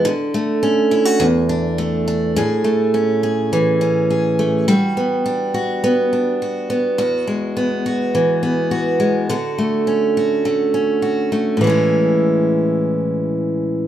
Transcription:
\new Staff \with { instrumentName = "Steel-string acoustic guitar" } { \time 4/4 \key a \major \tempo 4 = 104 d8 a8 cis'8 e'16 fis'16 e,8 d'8 a8 d'8 | <a, gis'>8 a8 cis'8 gis'8 e8 cis'8 gis'8 a8 | <g fis'>8 b8 d'8 fis'8 b8 d'8 fis'8 b8 | <e, fis'>8 gis8 b8 fis'8 e8 b8 fis'8 gis8 |
<d fis'>8 a8 cis'8 fis'8 a8 cis'8 fis'8 a8 | <a, e gis cis' e'>1 | }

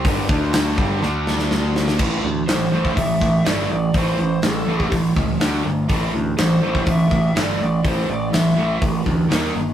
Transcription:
<<
  \new Staff \with { instrumentName = "Lead electric guitar" } { \time 4/4 \key a \minor \tempo 4 = 123 r1 | r4 c''4 e''4 d''8 d''8 | c''8 c''8 a'4 r2 | r4 c''4 e''4 d''8 d''8 |
c''8 d''8 e''4 r2 | }
  \new Staff \with { instrumentName = "Distorted electric guitar" } { \clef bass \time 4/4 \key a \minor <g, d g>8 <d a d'>4 <g, d g>8 <d a d'>2 | <a, e a>8 <a, e>8 <a, e>8 <a, e a>8 <a, e>8 <a, e>8 <a, e a>8 <a, e>8 | <a, e a>8 <a, e>8 <a, e>8 <a, e a>8 <a, e>8 <a, e>8 <d a d'>8 <d a>8 | <a, e a>8 <a, e>8 <a, e>8 <a, e a>8 <a, e>8 <a, e>8 <a, e a>8 <a, e>8 |
<a, e a>8 <a, e>8 <a, e>8 <a, e a>8 <a, e>8 <a, e>8 <dis ais dis'>8 <dis ais>8 | }
  \new Staff \with { instrumentName = "Distorted electric guitar" } { \clef bass \time 4/4 \key a \minor <g, d g>8 <d a d'>4 <g, d g>8 <d a d'>2 | <a, e a>8 <a, e>8 <a, e>8 <a, e a>8 <a, e>8 <a, e>8 <a, e a>8 <a, e>8 | <a, e a>8 <a, e>8 <a, e>8 <a, e a>8 <a, e>8 <a, e>8 <d a d'>8 <d a>8 | <a, e a>8 <a, e>8 <a, e>8 <a, e a>8 <a, e>8 <a, e>8 <a, e a>8 <a, e>8 |
<a, e a>8 <a, e>8 <a, e>8 <a, e a>8 <a, e>8 <a, e>8 <dis ais dis'>8 <dis ais>8 | }
  \new Staff \with { instrumentName = "Picked electric bass" } { \clef bass \time 4/4 \key a \minor g,,8 d,4 g,,8 d,2 | a,,8 d,8 a,,8 a,,8 a,,8 a,,8 g,,8 a,,8 | a,,8 a,,8 a,,8 a,,8 a,,8 cis,8 d,8 g,,8 | a,,8 d,8 a,,8 a,,8 a,,8 a,,8 g,,8 a,,8 |
a,,8 a,,8 a,,8 a,,8 a,,8 d,8 dis,8 g,,8 | }
  \new DrumStaff \with { instrumentName = "Drums" } \drummode { \time 4/4 <hho bd>8 bd8 <hho sn>8 bd8 sn8 sn16 sn16 sn8 sn16 sn16 | <cymc bd>4 <hho sn>8. bd16 <hho bd>8 bd8 <hho sn>4 | <hho bd>4 <hho sn>8. bd16 <hho bd>8 bd8 <hho sn>4 | <hho bd>4 <hho sn>8. bd16 <hho bd>8 bd8 <hho sn>4 |
<hho bd>4 <hho sn>4 <hho bd>8 bd8 <hho sn>4 | }
>>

